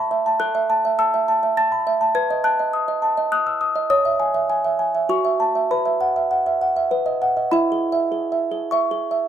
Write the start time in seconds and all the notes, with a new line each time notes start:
Already playing: A4 B5 C#6
0.11 E5
0.26 A5
0.40 A4 F#6
0.55 E5
0.70 A5
0.85 E5
0.99 A5 E6
1.14 E5
1.28 A5
1.43 E5
1.57 A5 A6
1.72 B5
1.87 E5
2.01 A5
2.15 B4 G#6
2.31 D#5
2.44 A5 F#6
2.59 D#5
2.73 D#6
2.88 D#5
3.02 A5
3.17 D#5
3.32 D#6 F#6
3.47 E6
3.61 D#6
3.76 D#5
3.90 C#5 D#6
4.05 E5
4.20 G#5
4.34 E5
4.50 G#5
4.64 E5
4.79 G#5
4.95 E5
5.09 F#4 C#6
5.25 E5
5.40 A5
5.55 E5
5.71 B4 B5
5.86 E5
6.01 F#5
6.16 E5
6.31 F#5
6.46 E5
6.61 F#5
6.76 E5
6.91 B4
7.06 D#5
7.22 F#5
7.37 D#5
7.51 E4 E5 B5
7.72 G#4
7.92 E5
8.12 G#4
8.32 E5
8.52 G#4
8.71 E5 C#6
8.91 G#4
9.11 E5